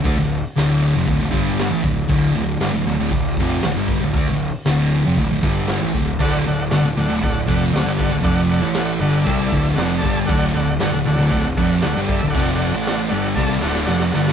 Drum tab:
HH |o---o---o---o---|o---o---o---o---|o---o---o---o---|o---o---o---o---|
SD |-o--o-------o---|----o-------o---|-o--o-------o---|----o-------o---|
BD |o-------o-o---o-|o-------o-o---o-|o-------o-o---o-|o-------o-o---o-|

HH |o---o---o---o---|o---o---o---o---|o---o-----------|
SD |----o-------o---|----o-------o---|-o--o---oooooooo|
BD |o-------o-o---o-|o-------o-o---o-|o-------o-------|